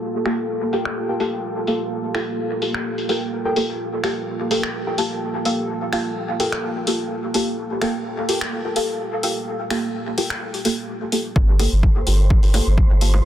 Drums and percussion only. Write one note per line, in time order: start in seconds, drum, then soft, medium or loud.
0.26 finger snap medium
0.26 open hi-hat medium
0.73 open hi-hat medium
0.85 finger snap medium
1.20 open hi-hat medium
1.67 open hi-hat medium
2.15 finger snap medium
2.15 open hi-hat medium
2.62 open hi-hat medium
2.74 finger snap medium
2.98 open hi-hat soft
3.09 open hi-hat medium
3.56 open hi-hat medium
4.04 finger snap medium
4.04 open hi-hat medium
4.51 open hi-hat medium
4.63 finger snap medium
4.98 open hi-hat medium
5.45 open hi-hat medium
5.93 finger snap medium
5.93 open hi-hat medium
6.40 open hi-hat medium
6.52 finger snap medium
6.87 open hi-hat medium
7.34 open hi-hat medium
7.82 finger snap medium
7.82 open hi-hat medium
8.29 open hi-hat medium
8.41 finger snap medium
8.76 open hi-hat medium
9.23 open hi-hat medium
9.70 finger snap medium
9.70 open hi-hat medium
10.18 open hi-hat medium
10.30 finger snap medium
10.54 open hi-hat soft
10.65 open hi-hat medium
11.12 open hi-hat medium
11.36 kick loud
11.59 open hi-hat medium
11.59 low bongo medium
11.83 kick loud
12.07 open hi-hat medium
12.30 kick loud
12.43 open hi-hat soft
12.54 open hi-hat medium
12.54 low bongo medium
12.78 kick medium
13.01 open hi-hat medium
13.14 low bongo medium